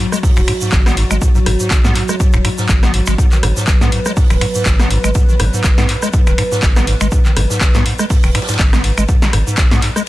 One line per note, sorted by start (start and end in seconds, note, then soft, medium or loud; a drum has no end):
0.00 10.09 F#3 medium
0.00 3.21 F#4 medium
0.12 0.18 G#3 loud
0.12 cross-stick soft
0.12 shaker medium
0.23 0.31 G#2 medium
0.23 kick loud
0.23 open hi-hat medium
0.23 shaker medium
0.36 0.45 D#1 medium
0.36 0.41 G#2 loud
0.36 finger snap medium
0.36 ride soft
0.36 shaker soft
0.48 0.52 G#2 loud
0.48 finger snap medium
0.48 open hi-hat loud
0.48 ride medium
0.61 0.71 G#2 medium
0.61 shaker medium
0.72 1.04 G#1 medium
0.72 0.80 G#1 loud
0.72 kick loud
0.72 snare loud
0.72 clap loud
0.72 ride medium
0.72 shaker medium
0.86 0.95 B3 loud
0.86 cross-stick medium
0.86 snare medium
0.86 snare soft
0.86 shaker soft
0.97 1.05 G#2 medium
0.97 open hi-hat loud
0.97 ride medium
1.11 1.18 G#1 loud
1.11 1.17 G#3 loud
1.11 finger snap medium
1.11 shaker medium
1.22 1.29 G#2 medium
1.22 kick loud
1.22 ride medium
1.22 shaker medium
1.35 1.39 G#2 loud
1.35 shaker soft
1.46 1.56 G#1 loud
1.46 1.51 G#2 loud
1.46 cross-stick medium
1.46 open hi-hat loud
1.46 ride medium
1.60 1.69 G#2 medium
1.60 shaker medium
1.70 1.78 G#1 loud
1.70 kick loud
1.70 snare loud
1.70 clap loud
1.70 ride medium
1.70 shaker medium
1.84 1.92 G#2 medium
1.84 1.94 B3 loud
1.84 snare medium
1.84 shaker soft
1.95 2.03 G#2 medium
1.95 clap soft
1.95 open hi-hat loud
1.95 ride medium
2.08 2.15 G#3 loud
2.08 cross-stick soft
2.08 shaker medium
2.20 2.28 G#2 medium
2.20 kick loud
2.20 ride medium
2.20 shaker medium
2.32 2.41 D#1 medium
2.32 2.37 G#2 loud
2.32 finger snap medium
2.32 shaker soft
2.45 2.49 G#2 loud
2.45 finger snap medium
2.45 open hi-hat loud
2.45 ride medium
2.58 2.67 G#2 medium
2.58 snare medium
2.58 shaker medium
2.69 3.01 G#1 medium
2.69 2.77 G#1 loud
2.69 kick loud
2.69 clap loud
2.69 ride medium
2.69 shaker medium
2.83 2.92 B3 loud
2.83 cross-stick medium
2.83 snare medium
2.83 shaker soft
2.94 3.01 G#2 medium
2.94 open hi-hat loud
2.94 ride medium
3.06 3.15 G#1 loud
3.06 3.13 G#3 loud
3.06 finger snap medium
3.06 snare soft
3.06 shaker medium
3.18 3.26 G#2 medium
3.18 10.09 B4 medium
3.18 kick loud
3.18 ride medium
3.18 shaker medium
3.32 3.38 D#3 medium
3.32 clap soft
3.32 shaker soft
3.43 3.53 G#1 loud
3.43 3.47 G#2 loud
3.43 cross-stick medium
3.43 open hi-hat loud
3.43 ride medium
3.57 3.66 G#2 medium
3.57 snare soft
3.57 shaker medium
3.67 3.75 G#1 loud
3.67 kick loud
3.67 snare loud
3.67 clap loud
3.67 ride medium
3.67 shaker medium
3.81 3.89 G#2 medium
3.81 3.90 B3 loud
3.81 snare medium
3.81 shaker soft
3.92 4.00 G#2 medium
3.92 open hi-hat loud
3.92 ride medium
4.05 4.12 G#3 loud
4.05 cross-stick soft
4.05 shaker medium
4.17 4.24 G#2 medium
4.17 kick loud
4.17 open hi-hat medium
4.17 shaker medium
4.30 4.38 D#1 medium
4.30 4.36 D#3 medium
4.30 finger snap medium
4.30 ride soft
4.30 shaker soft
4.41 4.46 G#2 loud
4.41 finger snap medium
4.41 open hi-hat loud
4.41 ride medium
4.55 4.64 G#2 medium
4.55 shaker medium
4.66 4.73 G#1 loud
4.66 4.98 G#1 medium
4.66 kick loud
4.66 snare loud
4.66 clap loud
4.66 ride medium
4.66 shaker medium
4.79 4.89 B3 loud
4.79 cross-stick medium
4.79 snare soft
4.79 snare medium
4.79 shaker soft
4.91 4.98 G#2 medium
4.91 open hi-hat medium
4.91 ride medium
5.04 5.12 G#1 loud
5.04 5.10 G#3 loud
5.04 finger snap medium
5.04 shaker medium
5.15 5.23 G#2 medium
5.15 kick loud
5.15 ride loud
5.15 shaker medium
5.29 5.35 D#3 medium
5.29 shaker soft
5.39 5.49 G#1 loud
5.39 5.44 G#2 loud
5.39 cross-stick medium
5.39 open hi-hat loud
5.39 ride medium
5.53 5.62 G#2 medium
5.53 shaker medium
5.64 5.72 G#1 loud
5.64 kick loud
5.64 snare loud
5.64 clap loud
5.64 ride medium
5.64 shaker medium
5.78 5.86 G#2 medium
5.78 5.87 B3 loud
5.78 snare medium
5.78 shaker soft
5.89 5.96 G#2 medium
5.89 clap soft
5.89 open hi-hat loud
5.89 ride medium
6.03 6.09 G#3 loud
6.03 cross-stick soft
6.03 shaker medium
6.13 6.21 G#2 medium
6.13 kick loud
6.13 ride medium
6.13 shaker medium
6.27 6.35 D#1 medium
6.27 6.33 D#3 medium
6.27 finger snap medium
6.27 shaker soft
6.38 6.43 G#2 loud
6.38 finger snap medium
6.38 open hi-hat loud
6.38 ride medium
6.52 6.61 G#2 medium
6.52 snare medium
6.52 shaker medium
6.62 6.95 G#1 medium
6.62 6.70 G#1 loud
6.62 kick loud
6.62 snare loud
6.62 clap loud
6.62 ride medium
6.62 shaker medium
6.76 6.85 B3 loud
6.76 cross-stick medium
6.76 snare medium
6.76 shaker soft
6.87 6.95 G#2 medium
6.87 snare medium
6.87 open hi-hat medium
6.87 ride medium
7.01 7.09 G#1 loud
7.01 7.07 G#3 loud
7.01 finger snap medium
7.01 shaker medium
7.11 7.19 G#2 medium
7.11 kick loud
7.11 ride medium
7.11 shaker medium
7.25 7.32 D#3 medium
7.25 clap soft
7.25 shaker soft
7.36 7.46 G#1 loud
7.36 7.41 G#2 loud
7.36 cross-stick medium
7.36 open hi-hat loud
7.36 ride medium
7.50 7.59 G#2 medium
7.50 snare soft
7.50 shaker medium
7.61 7.69 G#1 loud
7.61 kick loud
7.61 snare loud
7.61 clap loud
7.61 ride medium
7.61 shaker medium
7.74 7.82 G#2 loud
7.74 7.84 B3 loud
7.74 snare medium
7.74 shaker soft
7.86 7.93 G#2 medium
7.86 open hi-hat medium
7.86 ride medium
7.99 8.05 G#3 loud
7.99 cross-stick soft
7.99 shaker medium
8.10 8.18 G#2 medium
8.10 kick loud
8.10 open hi-hat medium
8.10 shaker medium
8.23 8.32 D#1 medium
8.23 8.30 D#3 medium
8.23 finger snap medium
8.23 ride soft
8.23 shaker soft
8.35 8.39 G#2 loud
8.35 finger snap medium
8.35 snare medium
8.35 open hi-hat loud
8.35 ride medium
8.42 snare medium
8.42 ride medium
8.48 8.58 G#2 medium
8.48 snare medium
8.48 ride medium
8.48 shaker medium
8.54 snare loud
8.54 ride medium
8.59 8.67 G#1 loud
8.59 8.91 G#1 medium
8.59 kick loud
8.59 snare loud
8.59 clap loud
8.59 ride medium
8.59 shaker medium
8.73 8.82 B3 loud
8.73 cross-stick medium
8.73 snare medium
8.73 snare soft
8.73 shaker soft
8.84 8.92 G#2 medium
8.84 open hi-hat medium
8.84 ride medium
8.98 9.05 G#1 loud
8.98 9.04 G#3 loud
8.98 finger snap medium
8.98 shaker medium
9.08 9.16 G#2 medium
9.08 kick loud
9.08 ride medium
9.08 shaker medium
9.22 9.28 D#3 medium
9.22 snare medium
9.22 shaker soft
9.33 9.43 G#1 loud
9.33 9.38 G#2 loud
9.33 cross-stick medium
9.33 open hi-hat loud
9.33 ride medium
9.47 9.56 G#2 medium
9.47 shaker medium
9.57 9.65 G#1 loud
9.57 kick loud
9.57 snare loud
9.57 clap loud
9.57 ride loud
9.57 shaker medium
9.71 9.79 G#2 medium
9.71 9.80 B3 loud
9.71 snare medium
9.71 shaker soft
9.82 9.90 G#2 medium
9.82 clap soft
9.82 open hi-hat loud
9.82 ride medium
9.96 10.02 G#3 loud
9.96 cross-stick soft
9.96 shaker medium